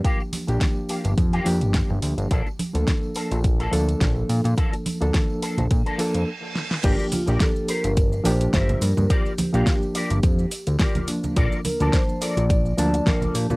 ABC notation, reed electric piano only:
X:1
M:4/4
L:1/16
Q:"Swing 16ths" 1/4=106
K:Gm
V:1 name="Reed electric piano"
[F,B,DG]3 [F,B,DG]6- [F,B,DG] [F,B,DG]6 | z3 [F,B,DA]6- [F,B,DA] [F,B,DA]6- | [F,B,DA]3 [F,B,DA]6- [F,B,DA] [F,B,DA]2 z4 | [F,B,DG]3 [F,B,DG]6- [F,B,DG] [F,B,DG]6- |
[F,B,DG]3 [F,B,DG]6- [F,B,DG] z4 [F,B,D]2- | [F,B,D]3 [F,B,Da]6- [F,B,Da] [F,B,Da]6 |]